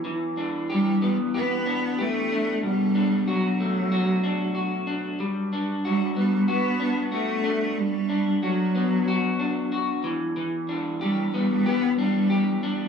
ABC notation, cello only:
X:1
M:4/4
L:1/8
Q:"Swing 16ths" 1/4=93
K:G
V:1 name="Cello" clef=bass
z2 G, G, B,2 A,2 | G,2 F,4 z2 | z2 G, G, B,2 A,2 | G,2 F,4 z2 |
z2 G, G, B, G,2 G, |]